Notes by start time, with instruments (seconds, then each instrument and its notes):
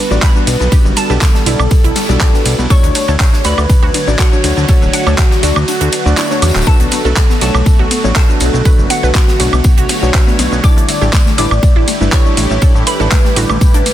Already playing: ambient pad D3 G3 B3 F#4, soft synth lead B4, synth pluck B5
0.11 analog synth bass A1, synth stab G3 D4 F#4 D5, synth arpeggio sound D4, cabasa
0.22 synth arpeggio sound B4, soft synth lead B4, synth pluck B5, kick, snare, clap, ride, tambourine, cabasa
0.35 synth stab G3 D4 F#4 B4, synth arpeggio sound D4, cabasa
0.47 analog synth bass B1, synth arpeggio sound D4, open hi-hat, ride, tambourine, cabasa
0.60 analog synth bass B1, synth arpeggio sound D4, cabasa
0.72 synth stab G3 D4 F#4 B4, ambient pad E4, synth arpeggio sound G4, kick, ride, tambourine, cabasa
0.85 analog synth bass F#1, synth arpeggio sound G3, cabasa
0.96 synth arpeggio sound G3, soft synth lead A4, synth pluck A5, open hi-hat, ride, tambourine, cabasa
1.10 analog synth bass B1, synth stab G3 D4 F#4 B4, synth arpeggio sound G4, cabasa
1.21 synth arpeggio sound G3, kick, snare, clap, ride, tambourine, cabasa
1.35 synth arpeggio sound G3, snare, cabasa
1.46 analog synth bass B1, synth stab G3 D4 F#4 D5, synth arpeggio sound E4, open hi-hat, ride, tambourine, cabasa
1.59 analog synth bass B1, synth arpeggio sound G3, cabasa, high woodblock
1.71 synth arpeggio sound G3, kick, ride, tambourine, cabasa
1.84 analog synth bass B1, synth arpeggio sound E4, closed hi-hat
1.96 synth arpeggio sound G3, snare, open hi-hat, ride, tambourine, cabasa
2.09 analog synth bass B1, synth stab G3 D4 F#4 D5, synth arpeggio sound G3, cabasa
2.20 synth arpeggio sound G4, kick, snare, clap, ride, tambourine, cabasa
2.34 synth arpeggio sound G3, synth stab G3 D4 F#4 B4, snare, cabasa
2.45 analog synth bass B1, synth arpeggio sound G3, open hi-hat, ride, tambourine, cabasa
2.59 analog synth bass B1, synth arpeggio sound G3, cabasa
2.70 ambient pad D3 F#3 A3 F#4 C#5, synth stab A3 D4 F#4 C#5, synth arpeggio sound A4, soft synth lead C#5, synth pluck C#6, kick, ride, tambourine, cabasa
2.83 analog synth bass D2, synth arpeggio sound D4, closed hi-hat, cabasa
2.95 synth arpeggio sound D4, snare, open hi-hat, ride, tambourine, cabasa
3.08 analog synth bass D2, synth stab A3 D4 F#4 C#5, synth arpeggio sound A4, cabasa
3.20 synth arpeggio sound D4, kick, snare, clap, ride, tambourine, cabasa
3.33 synth arpeggio sound D4, snare, cabasa
3.44 analog synth bass D2, synth stab A3 D4 F#4 D5, synth arpeggio sound F#4, soft synth lead B4, synth pluck B5, snare, open hi-hat, ride, tambourine, cabasa
3.58 analog synth bass D2, synth arpeggio sound D4, cabasa, high woodblock
3.69 synth arpeggio sound D4, kick, ride, tambourine, cabasa
3.83 analog synth bass D2, synth arpeggio sound F#4
3.94 synth arpeggio sound D4, open hi-hat, ride, tambourine, cabasa
4.07 analog synth bass A1, synth stab A3 D4 F#4 D5, synth arpeggio sound D4, cabasa
4.19 soft synth lead F#4, synth arpeggio sound A4, synth pluck F#5, kick, snare, clap, ride, tambourine, cabasa
4.32 synth stab A3 D4 F#4 C#5, synth arpeggio sound D4, cabasa
4.44 analog synth bass D2, synth arpeggio sound D4, open hi-hat, ride, tambourine, cabasa
4.57 analog synth bass D2, synth arpeggio sound D4, cabasa
4.68 synth stab A3 D4 F#4 C#5, ambient pad D4, synth arpeggio sound A4, kick, ride, tambourine, cabasa
4.82 analog synth bass D1, synth arpeggio sound D4, cabasa
4.93 synth arpeggio sound D4, soft synth lead F#4, synth pluck F#5, open hi-hat, ride, tambourine, cabasa
5.07 analog synth bass D2, synth stab A3 D4 F#4 C#5, synth arpeggio sound A4, cabasa, high woodblock
5.18 synth arpeggio sound D4, kick, snare, clap, ride, tambourine, cabasa
5.31 synth arpeggio sound D4, snare, cabasa
5.43 analog synth bass D2, synth stab A3 D4 F#4 D5, synth arpeggio sound F#4, open hi-hat, ride, tambourine, cabasa
5.56 analog synth bass D2, synth arpeggio sound D4, cabasa, high woodblock
5.68 synth arpeggio sound D4, ride, tambourine, swell, cabasa
5.81 analog synth bass D2, synth arpeggio sound F#4, closed hi-hat, cabasa
5.92 synth arpeggio sound D4, open hi-hat, ride, tambourine, cabasa
6.06 analog synth bass D2, synth stab A3 D4 F#4 D5, synth arpeggio sound D4, cabasa
6.17 synth arpeggio sound E4, snare, clap, ride, tambourine, cabasa
6.30 synth stab A3 D4 F#4 C#5, synth arpeggio sound D4, snare, cabasa
6.42 analog synth bass E2, synth arpeggio sound D4, snare, open hi-hat, ride, tambourine, cabasa, high woodblock
6.48 snare, tambourine
6.55 analog synth bass D1, synth arpeggio sound D4, snare, clap, tambourine, cabasa
6.61 snare, tambourine
6.67 ambient pad D3 B3, synth stab A3 D4 F#4 B4, soft synth lead A4, synth arpeggio sound A4, synth pluck A5, kick, ride, tambourine, cabasa
6.80 analog synth bass B1, synth arpeggio sound B3, closed hi-hat, cabasa
6.91 synth arpeggio sound B3, snare, open hi-hat, ride, tambourine, cabasa
7.05 analog synth bass B1, synth stab A3 D4 F#4 B4, synth arpeggio sound A4, cabasa
7.16 synth arpeggio sound B3, kick, snare, clap, ride, tambourine, cabasa
7.30 synth arpeggio sound B3, snare, cabasa
7.41 analog synth bass B1, synth stab A3 D4 F#4 C#5, synth arpeggio sound F#4, soft synth lead A4, synth pluck A5, snare, open hi-hat, ride, tambourine, cabasa
7.54 analog synth bass B1, synth arpeggio sound B3, cabasa, high woodblock
7.66 synth arpeggio sound B3, kick, ride, tambourine, cabasa
7.79 analog synth bass B1, synth arpeggio sound F#4
7.91 synth arpeggio sound B3, open hi-hat, ride, tambourine, cabasa
8.04 analog synth bass A1, synth stab A3 D4 F#4 C#5, synth arpeggio sound B3, cabasa
8.16 synth arpeggio sound A4, soft synth lead A4, synth pluck A5, kick, snare, clap, ride, tambourine, cabasa
8.29 synth stab A3 D4 F#4 B4, synth arpeggio sound B3, cabasa
8.40 analog synth bass B1, synth arpeggio sound B3, open hi-hat, ride, tambourine, cabasa
8.54 analog synth bass B1, synth arpeggio sound B3, cabasa
8.65 synth stab A3 D4 F#4 B4, synth arpeggio sound B4, ambient pad C#5, kick, ride, tambourine, cabasa
8.78 analog synth bass F#1, synth arpeggio sound B3, cabasa
8.90 synth arpeggio sound B3, soft synth lead F#4, synth pluck F#5, open hi-hat, ride, tambourine, cabasa
9.03 analog synth bass B1, synth stab A3 D4 F#4 B4, synth arpeggio sound B4, cabasa
9.15 synth arpeggio sound B3, kick, snare, clap, ride, tambourine, cabasa
9.28 synth arpeggio sound B3, snare, cabasa
9.40 analog synth bass B1, synth stab A3 D4 F#4 C#5, synth arpeggio sound F#4, open hi-hat, ride, tambourine, cabasa
9.53 analog synth bass B1, synth arpeggio sound B3, cabasa, high woodblock
9.64 synth arpeggio sound B3, kick, ride, tambourine, cabasa
9.78 analog synth bass B1, synth arpeggio sound F#4, closed hi-hat
9.89 synth arpeggio sound B3, snare, open hi-hat, ride, tambourine, cabasa
10.02 analog synth bass B1, synth stab A3 D4 F#4 C#5, synth arpeggio sound B3, cabasa
10.14 synth arpeggio sound B4, kick, snare, clap, ride, tambourine, cabasa
10.27 synth stab A3 D4 F#4 B4, synth arpeggio sound B3, snare, cabasa
10.39 analog synth bass B1, synth arpeggio sound B3, open hi-hat, ride, tambourine, cabasa
10.52 analog synth bass B1, synth arpeggio sound B3, cabasa
10.64 synth stab G3 D4 E4 A4, ambient pad G3 E4 G4, synth arpeggio sound G4, soft synth lead D5, synth pluck D6, kick, ride, tambourine, cabasa
10.77 analog synth bass A1, synth arpeggio sound A3, closed hi-hat, cabasa
10.88 synth arpeggio sound A3, snare, open hi-hat, ride, tambourine, cabasa
11.02 analog synth bass A1, synth stab G3 D4 E4 A4, synth arpeggio sound G4, cabasa
11.13 synth arpeggio sound A3, kick, snare, clap, ride, tambourine, cabasa
11.26 synth arpeggio sound A3, snare, cabasa
11.38 analog synth bass A1, synth stab G3 D4 E4 B4, synth arpeggio sound E4, soft synth lead D5, synth pluck D6, snare, open hi-hat, ride, tambourine, cabasa
11.51 analog synth bass A1, synth arpeggio sound A3, cabasa, high woodblock
11.63 synth arpeggio sound A3, kick, ride, tambourine, cabasa
11.76 analog synth bass A1, synth arpeggio sound E4
11.88 synth arpeggio sound A3, open hi-hat, ride, tambourine, cabasa
12.01 analog synth bass G1, synth stab G3 D4 E4 B4, synth arpeggio sound A3, cabasa
12.12 synth arpeggio sound G4, soft synth lead C#5, synth pluck C#6, kick, snare, clap, ride, tambourine, cabasa
12.26 synth stab G3 D4 E4 A4, synth arpeggio sound A3, cabasa
12.37 analog synth bass A1, synth arpeggio sound A3, open hi-hat, ride, tambourine, cabasa
12.50 analog synth bass A1, synth arpeggio sound A3, cabasa
12.62 synth stab G3 D4 E4 A4, synth arpeggio sound A4, kick, ride, tambourine, cabasa
12.75 analog synth bass A2, synth arpeggio sound A3, cabasa
12.87 synth arpeggio sound A3, soft synth lead B4, synth pluck B5, open hi-hat, ride, tambourine, cabasa
13.00 analog synth bass A1, synth stab G3 D4 E4 A4, synth arpeggio sound A4, cabasa
13.11 synth arpeggio sound A3, kick, snare, clap, ride, tambourine, cabasa
13.25 synth arpeggio sound A3, snare, cabasa
13.36 analog synth bass A1, synth stab G3 D4 E4 B4, synth arpeggio sound F#4, open hi-hat, ride, tambourine, cabasa
13.50 analog synth bass A1, synth arpeggio sound A3, cabasa, high woodblock
13.61 synth arpeggio sound A3, kick, ride, tambourine, cabasa
13.74 analog synth bass A1, synth arpeggio sound D4, closed hi-hat, cabasa
13.86 synth arpeggio sound A3, open hi-hat, ride, tambourine, cabasa